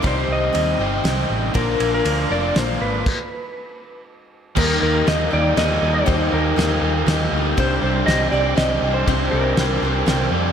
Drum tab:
CC |------|------|x-----|x-----|
RD |x-x-x-|xxx-x-|------|--x-x-|
SD |----o-|----o-|------|--o-o-|
BD |o-----|o-----|o-----|o-----|

CC |------|------|------|
RD |x-x-x-|x-x-x-|x-x-x-|
SD |--o-o-|--o-o-|--o-o-|
BD |o-----|o-----|o-----|